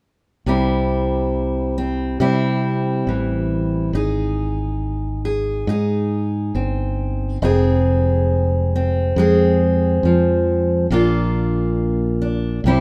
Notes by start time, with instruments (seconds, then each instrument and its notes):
0.46 fingered electric bass C2, steel-string acoustic guitar C3 G3 C4 E4
1.78 steel-string acoustic guitar C4
2.20 fingered electric bass C3, steel-string acoustic guitar G3 C4 E4
3.07 fingered electric bass A1, steel-string acoustic guitar E3
3.93 fingered electric bass G#1, steel-string acoustic guitar D#4 G#4
5.25 steel-string acoustic guitar G#4
5.67 fingered electric bass G#2, steel-string acoustic guitar D#4 G#4
6.55 fingered electric bass G1, steel-string acoustic guitar C4
7.42 fingered electric bass F1, steel-string acoustic guitar F2 G#3 C4 G#4
8.76 steel-string acoustic guitar C4
9.16 fingered electric bass F2, steel-string acoustic guitar G#3 C4 G#4
10.03 fingered electric bass F2, steel-string acoustic guitar F3
10.90 fingered electric bass A#1, steel-string acoustic guitar A#2 A#3 D4 F4
12.22 steel-string acoustic guitar D4
12.64 fingered electric bass C2, steel-string acoustic guitar C3 G3 C4 E4